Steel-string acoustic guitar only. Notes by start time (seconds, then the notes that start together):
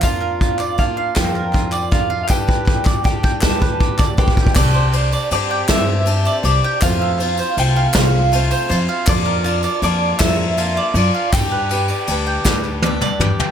0.03 F3 A#3 D4 F4 A#4
0.78 A#3 D4 F4 A#4
1.16 F3 A#3 D4 F4 A#4
1.92 D4 F4 A#4
2.29 G3 D4 G4 B4
3.04 G3 D4 G4 B4
3.41 G3 D4 G4 B4
4.17 D4 G4 B4
4.56 C4 D4 G4 C5
4.94 D4 G4 C5
5.31 C4 D4 G4 C5
5.68 C4 D4 G4 C5
6.06 C4 D4 G4 C5
6.43 D4 G4 C5
6.81 F3 A3 C4 F4 C5
7.20 C4 F4 C5
7.58 A3 C4 F4 C5
7.95 F3 A3 C4 F4 C5
8.32 A3 C4 F4 C5
8.69 C4 F4 C5
9.07 F3 A#3 D4 F4 A#4
9.44 D4 F4 A#4
9.82 A#3 D4 F4 A#4
10.21 F3 A#3 D4 F4 A#4
10.57 A#3 D4 F4 A#4
10.95 D4 F4 A#4
11.33 G3 D4 G4 B4
11.71 D4 G4 B4
12.08 G3 D4 G4 B4
12.46 G3 D4 G4 B4
12.84 G3 D4 G4 B4
13.20 D4 G4 B4